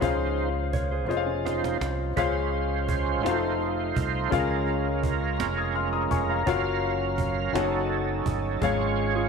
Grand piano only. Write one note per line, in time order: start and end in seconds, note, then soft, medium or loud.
0.00 1.05 C#3 medium
0.00 1.02 C#4 medium
0.00 1.02 F4 medium
0.00 1.03 G#4 medium
0.00 1.03 C5 medium
0.00 1.04 F5 medium
1.07 2.09 C#4 medium
1.07 2.10 F4 medium
1.07 2.10 G#4 medium
1.07 2.11 C5 medium
1.07 1.16 D#5 medium
1.17 2.14 F5 medium
2.16 3.21 C#3 medium
2.16 3.17 C#4 medium
2.16 3.18 F4 medium
2.16 3.18 G#4 medium
2.16 3.18 C5 medium
2.16 3.19 F5 medium
3.24 4.25 D#4 medium
3.24 4.25 F4 medium
3.24 3.31 F#4 soft
3.24 4.26 C5 medium
3.24 4.26 F5 medium
3.31 4.29 A4 medium
4.30 5.35 C#3 medium
4.30 5.32 C#4 medium
4.30 5.32 F4 medium
4.30 5.32 G#4 medium
4.30 5.33 A#4 medium
4.30 5.33 F5 medium
5.57 5.75 D#6 soft
5.57 5.74 G#6 soft
5.76 5.93 C6 medium
5.76 5.92 F6 medium
5.93 6.10 A#5 medium
5.93 6.10 D#6 medium
6.11 6.28 G#5 soft
6.11 6.28 C#6 medium
6.30 6.47 F5 soft
6.30 6.63 A#5 medium
6.46 7.47 C#4 medium
6.46 7.48 F4 medium
6.46 7.48 F#4 medium
6.46 7.48 A#4 medium
6.46 7.49 F5 medium
7.53 8.55 D#4 medium
7.53 8.55 F#4 medium
7.53 8.55 A4 medium
7.53 8.56 C#5 medium
7.53 8.56 F#5 medium
8.61 9.29 G#2 medium
8.61 9.29 G#4 medium
8.61 9.29 C#5 medium
8.61 9.29 F5 medium